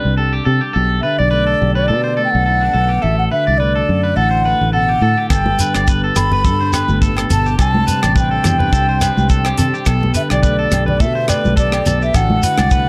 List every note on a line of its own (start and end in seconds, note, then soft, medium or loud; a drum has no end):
0.00 0.73 C3 medium
0.00 0.75 D3 medium
0.00 1.32 G3 medium
0.00 1.90 D4 medium
0.00 0.18 G4 medium
0.00 0.16 B4 medium
0.00 0.13 D5 medium
0.05 0.40 C2 medium
0.17 0.46 G4 medium
0.17 0.33 A4 medium
0.33 0.45 G4 medium
0.45 0.59 C3 medium
0.45 0.72 G4 medium
0.45 0.61 A4 medium
0.61 0.74 G4 medium
0.73 0.99 B1 medium
0.73 1.04 B2 medium
0.73 1.60 G4 medium
0.73 1.01 A4 medium
1.02 3.30 D3 medium
1.02 1.18 B4 medium
1.02 1.20 E5 medium
1.19 1.54 B1 medium
1.19 1.30 D5 medium
1.19 1.75 D5 medium
1.31 2.18 A3 medium
1.31 1.46 B4 medium
1.47 1.74 A4 medium
1.61 1.92 B1 medium
1.61 2.46 G4 medium
1.75 1.88 B4 medium
1.75 2.22 D5 medium
1.88 2.26 B2 medium
1.88 2.75 B3 medium
1.88 2.03 A4 medium
2.04 2.16 C5 medium
2.17 3.61 A3 medium
2.17 2.44 A4 medium
2.25 2.32 G5 medium
2.31 2.69 B1 loud
2.31 3.04 F#5 medium
2.46 2.63 E4 medium
2.46 2.61 A4 medium
2.61 2.74 D4 medium
2.61 3.04 G4 soft
2.73 2.98 B1 medium
2.73 3.05 B3 medium
2.73 2.89 A4 medium
2.89 3.02 G4 medium
3.02 3.27 A1 loud
3.02 3.32 A2 medium
3.02 3.90 F#4 medium
3.02 3.30 A4 medium
3.02 3.18 E5 medium
3.19 3.24 F#5 medium
3.31 5.59 D3 medium
3.31 3.47 B4 medium
3.31 3.59 E5 medium
3.47 3.82 C2 medium
3.47 3.59 D5 medium
3.58 4.46 A3 medium
3.58 3.75 B4 medium
3.58 4.18 D5 medium
3.75 4.03 A4 medium
3.89 4.13 F#2 medium
3.89 5.29 F#4 medium
4.03 4.16 B4 medium
4.17 4.54 A1 medium
4.17 5.29 E4 medium
4.17 4.30 A4 medium
4.17 4.72 F#5 loud
4.31 4.44 C5 medium
4.45 5.29 A3 medium
4.45 4.73 B4 medium
4.61 4.96 A1 medium
4.73 5.03 B2 medium
4.73 4.89 A4 medium
4.73 5.27 F#5 medium
4.89 5.01 G4 medium
5.01 5.15 A2 medium
5.01 5.32 A2 medium
5.01 5.17 A4 medium
5.17 5.30 G4 medium
5.30 5.55 G1 loud
5.30 7.56 G2 medium
5.30 7.57 B3 medium
5.30 7.57 G4 medium
5.30 5.58 A4 medium
5.30 7.57 A4 medium
5.30 6.16 A4 medium
5.30 5.87 G5 medium
5.30 kick medium
5.30 cross-stick medium
5.30 low agogo medium
5.30 shekere medium
5.46 high conga medium
5.59 9.87 D3 medium
5.59 5.75 B4 medium
5.59 closed hi-hat soft
5.59 shekere loud
5.74 6.10 G1 medium
5.74 5.88 D5 medium
5.74 cross-stick medium
5.74 low agogo medium
5.74 shekere soft
5.87 6.45 B3 medium
5.87 6.03 B4 medium
5.87 kick medium
5.87 shekere medium
6.04 6.31 A4 medium
6.16 6.46 G1 medium
6.16 7.56 A4 medium
6.16 6.98 B5 loud
6.16 cross-stick medium
6.16 closed hi-hat soft
6.16 low conga medium
6.16 low agogo medium
6.16 shekere medium
6.32 6.44 B4 medium
6.32 low conga medium
6.45 6.82 G2 medium
6.45 6.62 B3 medium
6.45 6.60 A4 medium
6.45 kick medium
6.45 shekere medium
6.61 7.60 D4 soft
6.61 6.73 C5 medium
6.73 7.56 B3 medium
6.73 7.01 B4 medium
6.73 cross-stick medium
6.73 closed hi-hat soft
6.73 low agogo medium
6.73 shekere medium
6.88 7.24 G1 medium
6.88 high conga medium
6.88 shekere soft
7.02 7.31 A2 medium
7.02 7.16 A4 medium
7.02 kick medium
7.02 shekere medium
7.17 7.29 A4 medium
7.17 cross-stick medium
7.17 low agogo medium
7.30 7.55 G1 medium
7.30 7.59 B2 medium
7.30 7.45 A4 medium
7.30 7.57 A5 loud
7.30 closed hi-hat soft
7.30 low conga medium
7.30 shekere medium
7.46 7.58 G4 medium
7.46 shekere soft
7.59 7.83 C2 loud
7.59 9.84 C3 medium
7.59 9.85 D4 medium
7.59 8.46 G4 medium
7.59 12.12 G4 medium
7.59 7.86 A4 medium
7.59 9.85 C5 medium
7.59 8.12 A5 loud
7.59 kick medium
7.59 cross-stick medium
7.59 low agogo medium
7.59 shekere medium
7.74 high conga medium
7.87 10.44 G3 medium
7.87 8.02 B4 medium
7.87 closed hi-hat soft
7.87 shekere medium
8.02 8.38 A1 medium
8.02 8.15 D5 medium
8.02 cross-stick medium
8.02 low agogo medium
8.02 shekere soft
8.16 9.04 D4 medium
8.16 8.31 B4 medium
8.16 9.56 G5 medium
8.16 kick medium
8.16 shekere medium
8.31 8.58 A4 medium
8.44 8.69 E2 medium
8.44 8.75 G4 medium
8.44 cross-stick medium
8.44 closed hi-hat soft
8.44 low conga medium
8.44 low agogo medium
8.44 shekere medium
8.59 8.72 B4 medium
8.59 low conga medium
8.73 9.10 C2 medium
8.73 9.30 G4 medium
8.73 8.88 A4 medium
8.73 kick medium
8.73 shekere medium
8.89 9.01 C5 medium
9.01 9.29 B4 medium
9.01 muted clean electric guitar stroke medium
9.01 cross-stick medium
9.01 closed hi-hat medium
9.01 low agogo medium
9.01 shekere medium
9.17 9.52 C2 medium
9.17 high conga medium
9.17 shekere soft
9.29 9.45 A4 medium
9.29 muted clean electric guitar stroke medium
9.29 kick medium
9.29 shekere medium
9.45 9.58 G4 medium
9.45 cross-stick medium
9.45 low agogo medium
9.58 9.71 C3 medium
9.58 9.85 G4 medium
9.58 9.73 A4 medium
9.58 closed hi-hat soft
9.58 low conga medium
9.58 shekere medium
9.74 9.86 G4 medium
9.74 shekere soft
9.86 10.11 B1 medium
9.86 10.16 B2 medium
9.86 12.13 B3 medium
9.86 10.71 G4 medium
9.86 10.14 A4 medium
9.86 12.13 A4 medium
9.86 kick medium
9.86 cross-stick medium
9.86 low agogo medium
9.86 shekere medium
10.03 high conga medium
10.14 12.15 D3 medium
10.14 10.30 B4 medium
10.14 10.22 E5 medium
10.14 closed hi-hat soft
10.14 shekere medium
10.30 10.66 B1 medium
10.30 10.42 D5 medium
10.30 10.85 D5 medium
10.30 cross-stick medium
10.30 low agogo medium
10.30 shekere soft
10.43 11.29 A3 medium
10.43 10.58 B4 medium
10.43 kick medium
10.43 shekere medium
10.59 10.86 A4 medium
10.71 11.02 B1 medium
10.71 11.58 G4 medium
10.71 cross-stick medium
10.71 closed hi-hat medium
10.71 low conga medium
10.71 low agogo medium
10.71 shekere medium
10.86 10.99 B4 medium
10.86 11.03 D5 medium
10.86 low conga medium
11.00 11.37 B2 medium
11.00 11.86 B3 medium
11.00 11.15 A4 medium
11.00 11.31 E5 loud
11.00 kick medium
11.00 shekere medium
11.15 11.28 C5 medium
11.28 12.17 A3 medium
11.28 11.56 B4 medium
11.28 11.57 D5 medium
11.28 cross-stick medium
11.28 closed hi-hat soft
11.28 low agogo medium
11.28 shekere medium
11.45 11.80 B1 medium
11.45 high conga medium
11.45 shekere soft
11.56 12.12 G4 medium
11.56 11.72 A4 medium
11.56 11.99 D5 medium
11.56 kick medium
11.56 shekere medium
11.72 11.85 G4 medium
11.72 cross-stick medium
11.72 low agogo medium
11.86 12.10 B1 medium
11.86 12.15 B3 medium
11.86 12.01 A4 medium
11.86 closed hi-hat soft
11.86 low conga medium
11.86 shekere loud
12.02 12.14 G4 medium
12.02 12.17 E5 loud
12.02 shekere soft
12.13 12.38 A1 loud
12.13 12.44 A2 medium
12.13 12.43 D3 medium
12.13 12.89 D4 medium
12.13 12.89 E4 medium
12.13 12.89 F#4 medium
12.13 12.42 A4 medium
12.13 12.89 F#5 loud
12.13 kick medium
12.13 cross-stick medium
12.13 low agogo medium
12.13 shekere medium
12.18 12.89 E4 medium
12.18 12.89 F#4 medium
12.18 muted clean electric guitar stroke medium
12.30 high conga medium
12.43 12.89 D3 medium
12.43 12.58 B4 medium
12.43 closed hi-hat soft
12.43 shekere loud
12.58 12.89 C2 medium
12.58 12.71 D5 medium
12.58 cross-stick medium
12.58 high conga medium
12.58 low agogo medium
12.58 shekere soft
12.71 12.89 A3 medium
12.71 12.87 B4 medium
12.71 kick medium
12.71 shekere medium